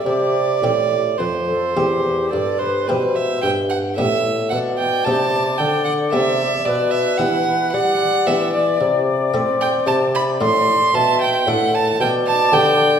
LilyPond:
<<
  \new Staff \with { instrumentName = "Violin" } { \time 3/4 \key c \major \tempo 4 = 56 d''4 c''4 d''16 c''16 b'16 e''16 | \key g \major g''16 fis''16 e''8 fis''16 g''16 a''8 g''16 fis''16 e''8 | d''16 e''16 fis''8 fis''8 e''16 d''16 r8. g''16 | a''16 b''16 c'''8 a''16 g''16 fis''16 a''16 g''16 a''16 g''8 | }
  \new Staff \with { instrumentName = "Flute" } { \time 3/4 \key c \major g'4 b'16 a'16 g'8 a'16 b'16 c''8 | \key g \major r4 d''2 | b'4 d''2~ | d''4 e''8. r16 d''4 | }
  \new Staff \with { instrumentName = "Harpsichord" } { \time 3/4 \key c \major r8 <c' e' g'>4 <c' e' g'>4 <c' e' g'>8 | \key g \major r8 <b d' g'>4 <b d' g'>4 <b d' g'>8 | r8 <b d' g'>4 <b d' g'>8 r8 <a e' a'>8 | r8 <d' fis' a'>4 <d' fis' a'>8 r8 <d' g' b'>8 | }
  \new Staff \with { instrumentName = "Harpsichord" } { \clef bass \time 3/4 \key c \major c8 a,8 f,8 e,8 g,8 b,8 | \key g \major g,8 a,8 b,8 c8 d8 c8 | b,8 e8 g8 e8 c8 c'8 | c8 a,8 b,8 a,8 b,8 d8 | }
  \new Staff \with { instrumentName = "Bassoon" } { \clef bass \time 3/4 \key c \major c8 a,8 f,8 e,8 g,8 b,8 | \key g \major g,8 a,8 b,8 c8 d8 c8 | b,8 e8 g8 e8 c8 c'8 | c8 a,8 b,8 a,8 b,8 d8 | }
>>